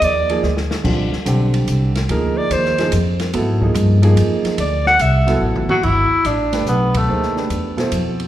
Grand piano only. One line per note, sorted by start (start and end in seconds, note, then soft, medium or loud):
0.00 0.24 F3 medium
0.00 0.25 A#3 medium
0.00 0.25 D#4 medium
0.00 0.25 G#4 medium
0.29 0.42 F3 medium
0.29 0.43 A#3 medium
0.29 0.43 D#4 medium
0.29 0.43 G#4 medium
0.84 1.10 D3 medium
0.84 1.10 G3 medium
0.84 1.10 C4 medium
0.84 1.11 F4 medium
1.25 1.90 D3 medium
1.25 1.90 G3 medium
1.25 1.90 C4 medium
1.25 1.91 G4 medium
2.09 2.73 F3 medium
2.09 2.74 A#3 medium
2.09 2.74 D#4 medium
2.09 2.74 G#4 medium
2.78 2.91 F3 medium
2.78 2.91 A#3 medium
2.78 2.92 D#4 medium
2.78 2.92 G#4 medium
3.34 3.59 F#3 medium
3.34 3.59 B3 medium
3.34 3.60 E4 medium
3.34 3.60 A4 medium
3.60 3.97 F3 medium
3.60 3.98 A#3 medium
3.60 3.98 D#4 medium
3.60 3.98 G#4 medium
4.02 4.56 F3 medium
4.02 4.56 A#3 medium
4.02 4.56 D#4 medium
4.02 4.56 G#4 loud
5.27 5.80 F#3 medium
5.27 5.80 B3 medium
5.27 5.81 E4 medium
5.27 5.81 A4 loud
6.52 7.06 A3 medium
6.52 7.06 D4 medium
6.52 7.06 G4 medium
6.52 7.06 B4 medium
7.08 7.34 A#3 medium
7.08 7.34 D#4 medium
7.08 7.34 G#4 medium
7.08 7.34 C5 medium
7.36 7.73 A3 medium
7.36 7.73 D4 soft
7.36 7.73 G4 medium
7.36 7.74 B4 medium
7.77 8.28 B2 medium
7.77 8.28 E4 medium
7.77 8.28 A4 medium
7.77 8.28 C5 medium